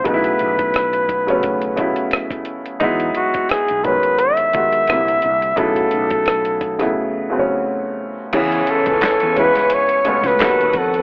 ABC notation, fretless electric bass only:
X:1
M:4/4
L:1/16
Q:"Swing 16ths" 1/4=87
K:Bmix
V:1 name="Fretless electric bass" clef=bass
B,,,2 B,,,8- B,,, z4 z | E,,2 z3 B,,,2 z4 z =C,,2 C,,2 | B,,,2 B,,,6 z8 | E,,2 z C,, z E,,2 z4 C,, D,, D,, =F,,2 |]